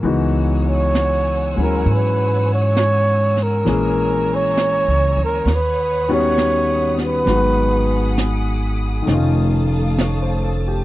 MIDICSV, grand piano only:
0, 0, Header, 1, 2, 480
1, 0, Start_track
1, 0, Tempo, 903614
1, 25, Time_signature, 4, 2, 24, 8
1, 5760, End_track
2, 0, Start_track
2, 0, Title_t, "Grand piano"
2, 0, Program_c, 0, 0
2, 0, Control_c, 0, 64, 127
2, 0, Note_on_c, 0, 70, 43
2, 15, Note_on_c, 0, 52, 55
2, 22, Note_on_c, 0, 56, 48
2, 23, Note_on_c, 0, 59, 46
2, 26, Note_on_c, 0, 63, 53
2, 27, Note_on_c, 0, 66, 56
2, 33, Control_c, 0, 64, 0
2, 129, Note_off_c, 0, 70, 0
2, 134, Control_c, 0, 64, 127
2, 819, Note_off_c, 0, 56, 0
2, 827, Note_on_c, 0, 56, 39
2, 835, Note_on_c, 0, 54, 39
2, 845, Note_on_c, 0, 61, 35
2, 848, Note_on_c, 0, 64, 44
2, 1931, Note_off_c, 0, 52, 0
2, 1931, Note_off_c, 0, 56, 0
2, 1939, Note_on_c, 0, 52, 50
2, 1939, Note_on_c, 0, 56, 49
2, 1948, Note_off_c, 0, 61, 0
2, 1949, Note_off_c, 0, 59, 0
2, 1950, Note_off_c, 0, 54, 0
2, 1950, Note_off_c, 0, 63, 0
2, 1951, Note_off_c, 0, 66, 0
2, 1954, Note_on_c, 0, 58, 43
2, 1956, Note_off_c, 0, 64, 0
2, 1956, Control_c, 0, 64, 0
2, 1956, Note_on_c, 0, 61, 49
2, 1959, Note_on_c, 0, 68, 58
2, 2062, Control_c, 0, 64, 127
2, 2902, Note_off_c, 0, 52, 0
2, 2902, Note_off_c, 0, 56, 0
2, 2909, Note_off_c, 0, 58, 0
2, 2910, Note_off_c, 0, 61, 0
2, 2912, Note_off_c, 0, 68, 0
2, 2914, Control_c, 0, 64, 0
2, 3020, Control_c, 0, 64, 127
2, 3233, Note_on_c, 0, 51, 54
2, 3237, Note_on_c, 0, 59, 50
2, 3237, Note_on_c, 0, 61, 45
2, 3239, Note_on_c, 0, 55, 50
2, 3240, Note_on_c, 0, 66, 62
2, 3858, Note_off_c, 0, 51, 0
2, 3866, Note_off_c, 0, 59, 0
2, 3866, Note_off_c, 0, 61, 0
2, 3866, Note_on_c, 0, 51, 47
2, 3867, Note_off_c, 0, 55, 0
2, 3867, Note_off_c, 0, 66, 0
2, 3868, Note_on_c, 0, 56, 48
2, 3871, Control_c, 0, 64, 0
2, 3873, Note_on_c, 0, 54, 42
2, 3875, Note_on_c, 0, 59, 45
2, 3875, Note_on_c, 0, 66, 55
2, 3963, Control_c, 0, 64, 127
2, 4785, Note_off_c, 0, 51, 0
2, 4793, Note_on_c, 0, 51, 48
2, 4807, Note_on_c, 0, 57, 43
2, 4822, Note_on_c, 0, 63, 45
2, 4824, Note_off_c, 0, 56, 0
2, 4827, Note_off_c, 0, 54, 0
2, 4827, Note_off_c, 0, 59, 0
2, 4827, Note_off_c, 0, 66, 0
2, 4828, Control_c, 0, 64, 0
2, 4838, Note_on_c, 0, 61, 47
2, 4855, Note_on_c, 0, 65, 49
2, 4914, Control_c, 0, 64, 127
2, 5316, Note_on_c, 0, 73, 40
2, 5429, Note_on_c, 0, 72, 45
2, 5538, Note_off_c, 0, 73, 0
2, 5542, Note_on_c, 0, 69, 43
2, 5634, Note_off_c, 0, 72, 0
2, 5672, Note_on_c, 0, 67, 46
2, 5690, Note_off_c, 0, 69, 0
2, 5760, Note_off_c, 0, 51, 0
2, 5760, Note_off_c, 0, 57, 0
2, 5760, Note_off_c, 0, 61, 0
2, 5760, Note_off_c, 0, 63, 0
2, 5760, Note_off_c, 0, 65, 0
2, 5760, Note_off_c, 0, 67, 0
2, 5760, End_track
0, 0, End_of_file